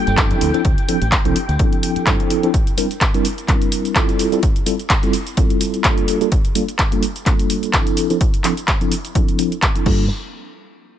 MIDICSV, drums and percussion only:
0, 0, Header, 1, 2, 480
1, 0, Start_track
1, 0, Tempo, 472441
1, 658, Time_signature, 4, 2, 24, 8
1, 11163, End_track
2, 0, Start_track
2, 0, Title_t, "Drums"
2, 71, Note_on_c, 9, 42, 37
2, 75, Note_on_c, 9, 54, 85
2, 173, Note_off_c, 9, 42, 0
2, 176, Note_off_c, 9, 54, 0
2, 177, Note_on_c, 9, 39, 122
2, 178, Note_on_c, 9, 42, 89
2, 179, Note_on_c, 9, 36, 106
2, 278, Note_off_c, 9, 39, 0
2, 280, Note_off_c, 9, 36, 0
2, 280, Note_off_c, 9, 42, 0
2, 312, Note_on_c, 9, 42, 40
2, 314, Note_on_c, 9, 54, 41
2, 413, Note_off_c, 9, 42, 0
2, 416, Note_off_c, 9, 54, 0
2, 419, Note_on_c, 9, 46, 108
2, 520, Note_off_c, 9, 46, 0
2, 545, Note_on_c, 9, 54, 84
2, 552, Note_on_c, 9, 42, 36
2, 646, Note_off_c, 9, 54, 0
2, 653, Note_off_c, 9, 42, 0
2, 657, Note_on_c, 9, 42, 86
2, 659, Note_on_c, 9, 36, 121
2, 759, Note_off_c, 9, 42, 0
2, 761, Note_off_c, 9, 36, 0
2, 792, Note_on_c, 9, 42, 36
2, 794, Note_on_c, 9, 54, 43
2, 894, Note_off_c, 9, 42, 0
2, 896, Note_off_c, 9, 54, 0
2, 899, Note_on_c, 9, 46, 110
2, 1001, Note_off_c, 9, 46, 0
2, 1032, Note_on_c, 9, 42, 38
2, 1036, Note_on_c, 9, 54, 81
2, 1134, Note_off_c, 9, 42, 0
2, 1136, Note_on_c, 9, 39, 116
2, 1138, Note_off_c, 9, 54, 0
2, 1138, Note_on_c, 9, 42, 85
2, 1140, Note_on_c, 9, 36, 105
2, 1238, Note_off_c, 9, 39, 0
2, 1239, Note_off_c, 9, 42, 0
2, 1241, Note_off_c, 9, 36, 0
2, 1273, Note_on_c, 9, 42, 37
2, 1273, Note_on_c, 9, 54, 42
2, 1374, Note_off_c, 9, 42, 0
2, 1375, Note_off_c, 9, 54, 0
2, 1379, Note_on_c, 9, 46, 110
2, 1481, Note_off_c, 9, 46, 0
2, 1508, Note_on_c, 9, 54, 85
2, 1513, Note_on_c, 9, 42, 37
2, 1610, Note_off_c, 9, 54, 0
2, 1615, Note_off_c, 9, 42, 0
2, 1619, Note_on_c, 9, 42, 88
2, 1620, Note_on_c, 9, 36, 119
2, 1721, Note_off_c, 9, 36, 0
2, 1721, Note_off_c, 9, 42, 0
2, 1753, Note_on_c, 9, 42, 36
2, 1754, Note_on_c, 9, 54, 38
2, 1855, Note_off_c, 9, 42, 0
2, 1856, Note_off_c, 9, 54, 0
2, 1860, Note_on_c, 9, 46, 106
2, 1961, Note_off_c, 9, 46, 0
2, 1984, Note_on_c, 9, 54, 84
2, 1993, Note_on_c, 9, 42, 37
2, 2086, Note_off_c, 9, 54, 0
2, 2095, Note_off_c, 9, 42, 0
2, 2099, Note_on_c, 9, 39, 119
2, 2100, Note_on_c, 9, 36, 106
2, 2100, Note_on_c, 9, 42, 88
2, 2200, Note_off_c, 9, 39, 0
2, 2201, Note_off_c, 9, 36, 0
2, 2202, Note_off_c, 9, 42, 0
2, 2235, Note_on_c, 9, 42, 38
2, 2240, Note_on_c, 9, 54, 41
2, 2336, Note_off_c, 9, 42, 0
2, 2341, Note_off_c, 9, 54, 0
2, 2341, Note_on_c, 9, 46, 107
2, 2442, Note_off_c, 9, 46, 0
2, 2469, Note_on_c, 9, 54, 86
2, 2473, Note_on_c, 9, 42, 34
2, 2571, Note_off_c, 9, 54, 0
2, 2574, Note_off_c, 9, 42, 0
2, 2580, Note_on_c, 9, 36, 117
2, 2581, Note_on_c, 9, 42, 85
2, 2582, Note_on_c, 9, 82, 43
2, 2682, Note_off_c, 9, 36, 0
2, 2682, Note_off_c, 9, 42, 0
2, 2684, Note_off_c, 9, 82, 0
2, 2713, Note_on_c, 9, 54, 37
2, 2714, Note_on_c, 9, 42, 37
2, 2715, Note_on_c, 9, 82, 22
2, 2815, Note_off_c, 9, 42, 0
2, 2815, Note_off_c, 9, 54, 0
2, 2817, Note_off_c, 9, 82, 0
2, 2821, Note_on_c, 9, 46, 109
2, 2823, Note_on_c, 9, 82, 79
2, 2923, Note_off_c, 9, 46, 0
2, 2924, Note_off_c, 9, 82, 0
2, 2951, Note_on_c, 9, 54, 80
2, 2955, Note_on_c, 9, 42, 39
2, 2957, Note_on_c, 9, 82, 34
2, 3053, Note_off_c, 9, 54, 0
2, 3056, Note_off_c, 9, 42, 0
2, 3058, Note_off_c, 9, 82, 0
2, 3059, Note_on_c, 9, 39, 111
2, 3060, Note_on_c, 9, 36, 103
2, 3061, Note_on_c, 9, 42, 89
2, 3063, Note_on_c, 9, 82, 44
2, 3161, Note_off_c, 9, 39, 0
2, 3162, Note_off_c, 9, 36, 0
2, 3163, Note_off_c, 9, 42, 0
2, 3164, Note_off_c, 9, 82, 0
2, 3194, Note_on_c, 9, 42, 36
2, 3196, Note_on_c, 9, 82, 22
2, 3296, Note_off_c, 9, 42, 0
2, 3298, Note_off_c, 9, 82, 0
2, 3300, Note_on_c, 9, 46, 103
2, 3302, Note_on_c, 9, 82, 77
2, 3402, Note_off_c, 9, 46, 0
2, 3404, Note_off_c, 9, 82, 0
2, 3428, Note_on_c, 9, 54, 76
2, 3434, Note_on_c, 9, 42, 37
2, 3436, Note_on_c, 9, 82, 33
2, 3529, Note_off_c, 9, 54, 0
2, 3535, Note_off_c, 9, 42, 0
2, 3537, Note_off_c, 9, 82, 0
2, 3539, Note_on_c, 9, 39, 58
2, 3540, Note_on_c, 9, 36, 114
2, 3541, Note_on_c, 9, 42, 87
2, 3542, Note_on_c, 9, 82, 43
2, 3641, Note_off_c, 9, 36, 0
2, 3641, Note_off_c, 9, 39, 0
2, 3642, Note_off_c, 9, 42, 0
2, 3644, Note_off_c, 9, 82, 0
2, 3674, Note_on_c, 9, 42, 36
2, 3675, Note_on_c, 9, 82, 22
2, 3775, Note_off_c, 9, 42, 0
2, 3777, Note_off_c, 9, 82, 0
2, 3779, Note_on_c, 9, 46, 107
2, 3781, Note_on_c, 9, 82, 79
2, 3881, Note_off_c, 9, 46, 0
2, 3882, Note_off_c, 9, 82, 0
2, 3909, Note_on_c, 9, 54, 80
2, 3913, Note_on_c, 9, 42, 38
2, 3915, Note_on_c, 9, 82, 33
2, 4011, Note_off_c, 9, 54, 0
2, 4014, Note_off_c, 9, 42, 0
2, 4016, Note_off_c, 9, 82, 0
2, 4018, Note_on_c, 9, 39, 111
2, 4019, Note_on_c, 9, 36, 101
2, 4020, Note_on_c, 9, 42, 91
2, 4022, Note_on_c, 9, 82, 46
2, 4120, Note_off_c, 9, 39, 0
2, 4121, Note_off_c, 9, 36, 0
2, 4122, Note_off_c, 9, 42, 0
2, 4123, Note_off_c, 9, 82, 0
2, 4154, Note_on_c, 9, 42, 39
2, 4155, Note_on_c, 9, 82, 22
2, 4255, Note_off_c, 9, 42, 0
2, 4257, Note_off_c, 9, 82, 0
2, 4260, Note_on_c, 9, 46, 101
2, 4262, Note_on_c, 9, 82, 75
2, 4362, Note_off_c, 9, 46, 0
2, 4363, Note_off_c, 9, 82, 0
2, 4387, Note_on_c, 9, 54, 78
2, 4392, Note_on_c, 9, 42, 34
2, 4394, Note_on_c, 9, 82, 34
2, 4489, Note_off_c, 9, 54, 0
2, 4494, Note_off_c, 9, 42, 0
2, 4496, Note_off_c, 9, 82, 0
2, 4498, Note_on_c, 9, 42, 92
2, 4500, Note_on_c, 9, 36, 112
2, 4500, Note_on_c, 9, 82, 44
2, 4600, Note_off_c, 9, 42, 0
2, 4601, Note_off_c, 9, 36, 0
2, 4602, Note_off_c, 9, 82, 0
2, 4628, Note_on_c, 9, 54, 35
2, 4632, Note_on_c, 9, 42, 39
2, 4634, Note_on_c, 9, 82, 23
2, 4730, Note_off_c, 9, 54, 0
2, 4734, Note_off_c, 9, 42, 0
2, 4735, Note_off_c, 9, 82, 0
2, 4739, Note_on_c, 9, 46, 100
2, 4740, Note_on_c, 9, 82, 83
2, 4840, Note_off_c, 9, 46, 0
2, 4842, Note_off_c, 9, 82, 0
2, 4866, Note_on_c, 9, 54, 71
2, 4871, Note_on_c, 9, 42, 39
2, 4873, Note_on_c, 9, 82, 36
2, 4968, Note_off_c, 9, 54, 0
2, 4973, Note_off_c, 9, 42, 0
2, 4975, Note_off_c, 9, 82, 0
2, 4976, Note_on_c, 9, 39, 110
2, 4977, Note_on_c, 9, 42, 91
2, 4979, Note_on_c, 9, 36, 104
2, 4979, Note_on_c, 9, 82, 47
2, 5077, Note_off_c, 9, 39, 0
2, 5079, Note_off_c, 9, 42, 0
2, 5081, Note_off_c, 9, 36, 0
2, 5081, Note_off_c, 9, 82, 0
2, 5110, Note_on_c, 9, 42, 38
2, 5112, Note_on_c, 9, 82, 23
2, 5212, Note_off_c, 9, 42, 0
2, 5213, Note_off_c, 9, 82, 0
2, 5216, Note_on_c, 9, 46, 100
2, 5217, Note_on_c, 9, 82, 81
2, 5317, Note_off_c, 9, 46, 0
2, 5319, Note_off_c, 9, 82, 0
2, 5350, Note_on_c, 9, 42, 40
2, 5352, Note_on_c, 9, 82, 35
2, 5452, Note_off_c, 9, 42, 0
2, 5454, Note_off_c, 9, 82, 0
2, 5458, Note_on_c, 9, 42, 91
2, 5459, Note_on_c, 9, 36, 113
2, 5459, Note_on_c, 9, 82, 47
2, 5559, Note_off_c, 9, 42, 0
2, 5561, Note_off_c, 9, 36, 0
2, 5561, Note_off_c, 9, 82, 0
2, 5591, Note_on_c, 9, 42, 39
2, 5593, Note_on_c, 9, 82, 22
2, 5693, Note_off_c, 9, 42, 0
2, 5695, Note_off_c, 9, 82, 0
2, 5697, Note_on_c, 9, 46, 103
2, 5699, Note_on_c, 9, 82, 81
2, 5799, Note_off_c, 9, 46, 0
2, 5800, Note_off_c, 9, 82, 0
2, 5830, Note_on_c, 9, 42, 39
2, 5831, Note_on_c, 9, 82, 34
2, 5833, Note_on_c, 9, 54, 76
2, 5931, Note_off_c, 9, 42, 0
2, 5933, Note_off_c, 9, 82, 0
2, 5934, Note_off_c, 9, 54, 0
2, 5934, Note_on_c, 9, 39, 113
2, 5936, Note_on_c, 9, 42, 93
2, 5938, Note_on_c, 9, 82, 47
2, 5940, Note_on_c, 9, 36, 100
2, 6036, Note_off_c, 9, 39, 0
2, 6037, Note_off_c, 9, 42, 0
2, 6039, Note_off_c, 9, 82, 0
2, 6041, Note_off_c, 9, 36, 0
2, 6071, Note_on_c, 9, 42, 39
2, 6073, Note_on_c, 9, 82, 23
2, 6172, Note_off_c, 9, 42, 0
2, 6174, Note_off_c, 9, 82, 0
2, 6177, Note_on_c, 9, 46, 99
2, 6179, Note_on_c, 9, 82, 81
2, 6279, Note_off_c, 9, 46, 0
2, 6281, Note_off_c, 9, 82, 0
2, 6310, Note_on_c, 9, 42, 36
2, 6312, Note_on_c, 9, 82, 35
2, 6412, Note_off_c, 9, 42, 0
2, 6414, Note_off_c, 9, 82, 0
2, 6418, Note_on_c, 9, 42, 92
2, 6420, Note_on_c, 9, 36, 110
2, 6420, Note_on_c, 9, 82, 47
2, 6520, Note_off_c, 9, 42, 0
2, 6521, Note_off_c, 9, 36, 0
2, 6522, Note_off_c, 9, 82, 0
2, 6550, Note_on_c, 9, 42, 40
2, 6552, Note_on_c, 9, 82, 23
2, 6652, Note_off_c, 9, 42, 0
2, 6653, Note_off_c, 9, 82, 0
2, 6658, Note_on_c, 9, 46, 102
2, 6660, Note_on_c, 9, 82, 85
2, 6760, Note_off_c, 9, 46, 0
2, 6761, Note_off_c, 9, 82, 0
2, 6792, Note_on_c, 9, 42, 40
2, 6794, Note_on_c, 9, 82, 36
2, 6894, Note_off_c, 9, 42, 0
2, 6895, Note_off_c, 9, 82, 0
2, 6896, Note_on_c, 9, 39, 112
2, 6898, Note_on_c, 9, 42, 93
2, 6899, Note_on_c, 9, 36, 99
2, 6899, Note_on_c, 9, 82, 47
2, 6998, Note_off_c, 9, 39, 0
2, 6999, Note_off_c, 9, 42, 0
2, 7001, Note_off_c, 9, 36, 0
2, 7001, Note_off_c, 9, 82, 0
2, 7031, Note_on_c, 9, 42, 40
2, 7033, Note_on_c, 9, 82, 23
2, 7133, Note_off_c, 9, 42, 0
2, 7134, Note_off_c, 9, 82, 0
2, 7138, Note_on_c, 9, 46, 101
2, 7140, Note_on_c, 9, 82, 84
2, 7240, Note_off_c, 9, 46, 0
2, 7241, Note_off_c, 9, 82, 0
2, 7272, Note_on_c, 9, 42, 40
2, 7274, Note_on_c, 9, 82, 35
2, 7374, Note_off_c, 9, 42, 0
2, 7376, Note_off_c, 9, 82, 0
2, 7377, Note_on_c, 9, 39, 60
2, 7379, Note_on_c, 9, 42, 93
2, 7380, Note_on_c, 9, 36, 109
2, 7381, Note_on_c, 9, 82, 47
2, 7479, Note_off_c, 9, 39, 0
2, 7481, Note_off_c, 9, 36, 0
2, 7481, Note_off_c, 9, 42, 0
2, 7482, Note_off_c, 9, 82, 0
2, 7513, Note_on_c, 9, 42, 41
2, 7514, Note_on_c, 9, 82, 23
2, 7614, Note_off_c, 9, 42, 0
2, 7616, Note_off_c, 9, 82, 0
2, 7618, Note_on_c, 9, 46, 101
2, 7620, Note_on_c, 9, 82, 82
2, 7720, Note_off_c, 9, 46, 0
2, 7722, Note_off_c, 9, 82, 0
2, 7751, Note_on_c, 9, 42, 40
2, 7753, Note_on_c, 9, 82, 35
2, 7853, Note_off_c, 9, 42, 0
2, 7855, Note_off_c, 9, 82, 0
2, 7857, Note_on_c, 9, 39, 118
2, 7859, Note_on_c, 9, 36, 95
2, 7859, Note_on_c, 9, 42, 95
2, 7861, Note_on_c, 9, 82, 48
2, 7959, Note_off_c, 9, 39, 0
2, 7961, Note_off_c, 9, 36, 0
2, 7961, Note_off_c, 9, 42, 0
2, 7962, Note_off_c, 9, 82, 0
2, 7993, Note_on_c, 9, 42, 41
2, 7994, Note_on_c, 9, 82, 24
2, 8094, Note_off_c, 9, 42, 0
2, 8096, Note_off_c, 9, 82, 0
2, 8097, Note_on_c, 9, 46, 100
2, 8099, Note_on_c, 9, 82, 82
2, 8199, Note_off_c, 9, 46, 0
2, 8201, Note_off_c, 9, 82, 0
2, 8231, Note_on_c, 9, 42, 39
2, 8233, Note_on_c, 9, 82, 35
2, 8333, Note_off_c, 9, 42, 0
2, 8334, Note_off_c, 9, 82, 0
2, 8338, Note_on_c, 9, 42, 94
2, 8339, Note_on_c, 9, 36, 113
2, 8340, Note_on_c, 9, 82, 47
2, 8440, Note_off_c, 9, 42, 0
2, 8441, Note_off_c, 9, 36, 0
2, 8442, Note_off_c, 9, 82, 0
2, 8471, Note_on_c, 9, 42, 41
2, 8473, Note_on_c, 9, 82, 22
2, 8572, Note_off_c, 9, 42, 0
2, 8574, Note_off_c, 9, 82, 0
2, 8575, Note_on_c, 9, 39, 62
2, 8577, Note_on_c, 9, 46, 105
2, 8579, Note_on_c, 9, 82, 82
2, 8677, Note_off_c, 9, 39, 0
2, 8678, Note_off_c, 9, 46, 0
2, 8680, Note_off_c, 9, 82, 0
2, 8711, Note_on_c, 9, 42, 42
2, 8713, Note_on_c, 9, 82, 35
2, 8813, Note_off_c, 9, 42, 0
2, 8814, Note_off_c, 9, 82, 0
2, 8817, Note_on_c, 9, 39, 117
2, 8819, Note_on_c, 9, 36, 99
2, 8819, Note_on_c, 9, 42, 93
2, 8821, Note_on_c, 9, 82, 46
2, 8919, Note_off_c, 9, 39, 0
2, 8920, Note_off_c, 9, 42, 0
2, 8921, Note_off_c, 9, 36, 0
2, 8922, Note_off_c, 9, 82, 0
2, 8952, Note_on_c, 9, 42, 41
2, 8954, Note_on_c, 9, 82, 23
2, 9054, Note_off_c, 9, 42, 0
2, 9056, Note_off_c, 9, 82, 0
2, 9058, Note_on_c, 9, 46, 105
2, 9060, Note_on_c, 9, 82, 83
2, 9160, Note_off_c, 9, 46, 0
2, 9161, Note_off_c, 9, 82, 0
2, 9191, Note_on_c, 9, 42, 41
2, 9193, Note_on_c, 9, 82, 34
2, 9293, Note_off_c, 9, 42, 0
2, 9295, Note_off_c, 9, 82, 0
2, 9299, Note_on_c, 9, 36, 110
2, 9299, Note_on_c, 9, 42, 95
2, 9301, Note_on_c, 9, 82, 45
2, 9400, Note_off_c, 9, 42, 0
2, 9401, Note_off_c, 9, 36, 0
2, 9402, Note_off_c, 9, 82, 0
2, 9433, Note_on_c, 9, 42, 41
2, 9435, Note_on_c, 9, 82, 23
2, 9535, Note_off_c, 9, 42, 0
2, 9537, Note_off_c, 9, 82, 0
2, 9538, Note_on_c, 9, 46, 101
2, 9540, Note_on_c, 9, 82, 84
2, 9640, Note_off_c, 9, 46, 0
2, 9641, Note_off_c, 9, 82, 0
2, 9673, Note_on_c, 9, 42, 41
2, 9675, Note_on_c, 9, 82, 34
2, 9775, Note_off_c, 9, 42, 0
2, 9776, Note_off_c, 9, 82, 0
2, 9777, Note_on_c, 9, 39, 122
2, 9779, Note_on_c, 9, 36, 98
2, 9779, Note_on_c, 9, 42, 97
2, 9780, Note_on_c, 9, 82, 47
2, 9879, Note_off_c, 9, 39, 0
2, 9880, Note_off_c, 9, 42, 0
2, 9881, Note_off_c, 9, 36, 0
2, 9882, Note_off_c, 9, 82, 0
2, 9911, Note_on_c, 9, 42, 42
2, 9913, Note_on_c, 9, 82, 24
2, 10013, Note_off_c, 9, 42, 0
2, 10015, Note_off_c, 9, 82, 0
2, 10017, Note_on_c, 9, 49, 82
2, 10019, Note_on_c, 9, 36, 109
2, 10119, Note_off_c, 9, 49, 0
2, 10120, Note_off_c, 9, 36, 0
2, 11163, End_track
0, 0, End_of_file